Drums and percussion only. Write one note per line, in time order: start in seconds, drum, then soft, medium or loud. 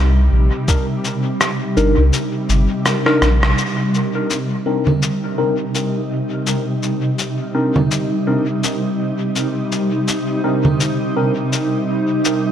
0.68 kick medium
0.68 cabasa soft
1.05 cabasa soft
1.41 cross-stick medium
1.41 cabasa soft
1.77 cabasa soft
2.13 cabasa soft
2.49 cabasa soft
2.86 cross-stick medium
2.86 cabasa medium
3.06 cross-stick medium
3.22 cross-stick medium
3.22 cabasa soft
3.43 cross-stick medium
3.58 cabasa soft
3.94 cabasa soft
4.30 cabasa soft
4.87 low conga medium
5.02 cabasa soft
5.75 cabasa soft
6.47 cabasa soft
6.83 cabasa soft
7.19 cabasa soft
7.76 low conga medium
7.91 cabasa soft
8.64 cabasa soft
9.36 cabasa soft
9.72 cabasa soft
10.08 cabasa soft
10.65 low conga medium
10.80 cabasa soft
11.53 cabasa soft
12.25 cabasa soft